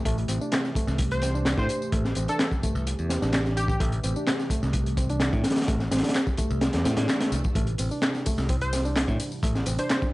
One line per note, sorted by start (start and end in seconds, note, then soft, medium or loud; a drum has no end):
0.00 10.13 C3 medium
0.00 10.13 E3 medium
0.00 7.51 A3 medium
0.05 0.24 A1 loud
0.05 0.17 A3 medium
0.05 7.54 G4 medium
0.05 kick loud
0.05 closed hi-hat medium
0.05 tambourine soft
0.18 closed hi-hat soft
0.18 tambourine soft
0.28 0.38 A1 medium
0.28 0.40 C4 medium
0.28 closed hi-hat medium
0.28 tambourine medium
0.41 0.51 D4 medium
0.41 tambourine soft
0.52 0.58 C4 medium
0.52 snare loud
0.52 clap loud
0.52 closed hi-hat medium
0.52 tambourine soft
0.65 snare soft
0.65 tambourine soft
0.75 1.21 A3 medium
0.75 kick medium
0.75 closed hi-hat medium
0.75 tambourine medium
0.87 1.54 C2 loud
0.87 snare soft
0.87 tambourine soft
0.98 kick loud
0.98 closed hi-hat medium
0.98 tambourine soft
1.11 1.58 C5 medium
1.11 closed hi-hat soft
1.11 tambourine soft
1.22 1.34 C4 medium
1.22 snare soft
1.22 closed hi-hat medium
1.22 tambourine medium
1.35 1.80 D4 medium
1.35 tambourine soft
1.45 snare loud
1.45 clap loud
1.45 closed hi-hat medium
1.45 tambourine soft
1.58 1.67 A2 loud
1.58 1.93 C5 medium
1.58 kick medium
1.58 tambourine soft
1.69 closed hi-hat medium
1.69 tambourine medium
1.82 tambourine soft
1.92 2.11 A1 loud
1.92 2.04 A3 medium
1.92 kick loud
1.92 closed hi-hat medium
1.92 tambourine soft
2.05 snare soft
2.05 tambourine soft
2.15 2.26 A1 medium
2.15 2.27 C4 medium
2.15 closed hi-hat medium
2.15 tambourine medium
2.28 2.39 D4 medium
2.28 2.39 A4 medium
2.28 closed hi-hat soft
2.28 tambourine soft
2.39 2.45 C4 medium
2.39 snare loud
2.39 clap loud
2.39 closed hi-hat medium
2.39 tambourine soft
2.51 kick medium
2.51 tambourine soft
2.63 3.09 A3 medium
2.63 kick medium
2.63 closed hi-hat medium
2.63 tambourine medium
2.75 2.93 C2 medium
2.75 tambourine soft
2.87 closed hi-hat medium
2.87 tambourine soft
2.99 3.17 E2 medium
2.99 tambourine soft
3.09 3.21 C4 medium
3.09 snare soft
3.09 closed hi-hat medium
3.09 tambourine medium
3.22 3.76 A1 medium
3.22 3.68 D4 medium
3.22 snare soft
3.22 tambourine soft
3.33 snare loud
3.33 clap loud
3.33 closed hi-hat medium
3.33 tambourine soft
3.46 snare soft
3.46 tambourine soft
3.57 3.65 G4 medium
3.57 closed hi-hat medium
3.57 tambourine medium
3.68 3.76 G4 medium
3.68 kick medium
3.68 tambourine soft
3.80 3.99 A1 loud
3.80 3.92 A3 medium
3.80 kick loud
3.80 closed hi-hat medium
3.80 tambourine soft
3.92 closed hi-hat soft
3.92 tambourine soft
4.03 4.13 A1 medium
4.03 4.15 C4 medium
4.03 closed hi-hat medium
4.03 tambourine medium
4.16 4.26 D4 medium
4.16 tambourine soft
4.27 4.33 C4 medium
4.27 snare loud
4.27 clap loud
4.27 closed hi-hat medium
4.27 tambourine soft
4.39 snare soft
4.39 tambourine soft
4.50 4.96 A3 medium
4.50 kick medium
4.50 closed hi-hat medium
4.50 tambourine medium
4.62 5.29 C2 loud
4.62 snare soft
4.62 tambourine soft
4.73 kick loud
4.73 closed hi-hat medium
4.73 tambourine soft
4.86 closed hi-hat soft
4.86 tambourine soft
4.97 5.08 C4 medium
4.97 kick medium
4.97 closed hi-hat medium
4.97 tambourine medium
5.09 5.55 D4 medium
5.09 closed hi-hat soft
5.09 tambourine soft
5.20 snare loud
5.20 clap loud
5.20 closed hi-hat medium
5.20 tambourine soft
5.33 5.42 A2 loud
5.33 kick loud
5.33 tambourine soft
5.44 snare medium
5.44 closed hi-hat medium
5.44 tambourine medium
5.50 snare medium
5.50 closed hi-hat medium
5.56 snare loud
5.56 closed hi-hat medium
5.56 tambourine soft
5.62 snare loud
5.62 closed hi-hat medium
5.68 5.86 A1 loud
5.68 5.79 A3 medium
5.68 kick loud
5.68 closed hi-hat medium
5.68 tambourine soft
5.80 snare soft
5.80 tambourine soft
5.91 6.01 A1 medium
5.91 6.02 C4 medium
5.91 snare medium
5.91 closed hi-hat medium
5.91 tambourine medium
5.97 snare medium
5.97 closed hi-hat medium
6.03 6.14 D4 medium
6.03 snare medium
6.03 closed hi-hat medium
6.03 tambourine soft
6.09 snare medium
6.09 closed hi-hat medium
6.14 6.20 C4 medium
6.14 snare loud
6.14 clap loud
6.14 closed hi-hat medium
6.14 tambourine soft
6.27 kick medium
6.27 tambourine soft
6.37 6.84 A3 medium
6.37 kick loud
6.37 closed hi-hat medium
6.37 tambourine medium
6.50 6.68 C2 loud
6.50 tambourine soft
6.61 snare loud
6.61 closed hi-hat medium
6.61 tambourine soft
6.61 swell medium
6.73 6.84 E2 medium
6.73 snare loud
6.73 closed hi-hat medium
6.73 tambourine soft
6.85 6.94 A2 medium
6.85 6.96 C4 medium
6.85 snare medium
6.85 closed hi-hat medium
6.85 tambourine medium
6.97 7.06 A2 medium
6.97 7.43 D4 medium
6.97 snare loud
6.97 closed hi-hat medium
6.97 tambourine soft
7.09 snare loud
7.09 clap loud
7.09 closed hi-hat medium
7.09 tambourine soft
7.20 snare loud
7.20 closed hi-hat medium
7.20 tambourine soft
7.32 7.41 C2 medium
7.32 closed hi-hat medium
7.32 tambourine medium
7.44 kick loud
7.44 tambourine soft
7.55 7.74 A1 loud
7.55 10.13 G3 medium
7.55 7.67 A3 medium
7.55 10.13 E4 medium
7.55 kick loud
7.55 closed hi-hat medium
7.55 tambourine soft
7.67 closed hi-hat soft
7.67 tambourine soft
7.78 7.88 A1 medium
7.78 7.90 C4 medium
7.78 closed hi-hat medium
7.78 ride medium
7.78 tambourine medium
7.91 8.25 D4 medium
7.91 tambourine soft
8.02 snare loud
8.02 clap loud
8.02 closed hi-hat medium
8.02 tambourine soft
8.15 snare soft
8.15 tambourine soft
8.26 8.48 A3 medium
8.26 kick medium
8.26 closed hi-hat medium
8.26 ride medium
8.26 tambourine medium
8.38 9.04 C2 loud
8.38 snare soft
8.38 tambourine soft
8.49 8.55 C4 medium
8.49 kick loud
8.49 closed hi-hat medium
8.49 tambourine soft
8.61 9.08 C5 medium
8.61 closed hi-hat soft
8.61 tambourine soft
8.73 8.84 C4 medium
8.73 snare soft
8.73 closed hi-hat medium
8.73 ride medium
8.73 tambourine medium
8.85 9.31 D4 medium
8.85 tambourine soft
8.96 snare loud
8.96 clap loud
8.96 closed hi-hat loud
8.96 tambourine soft
9.08 9.17 A2 loud
9.08 kick medium
9.08 tambourine soft
9.20 closed hi-hat medium
9.20 ride medium
9.20 tambourine medium
9.32 tambourine soft
9.43 9.61 A1 loud
9.43 9.54 A3 medium
9.43 kick loud
9.43 closed hi-hat medium
9.43 tambourine soft
9.55 snare soft
9.55 tambourine soft
9.66 9.76 A1 medium
9.66 9.77 C4 medium
9.66 closed hi-hat medium
9.66 ride medium
9.66 tambourine medium
9.78 10.12 D4 medium
9.78 9.86 C5 medium
9.78 closed hi-hat soft
9.78 ride soft
9.78 tambourine soft
9.90 9.98 C5 medium
9.90 snare loud
9.90 clap loud
9.90 closed hi-hat medium
9.90 tambourine soft
10.02 kick loud
10.02 tambourine soft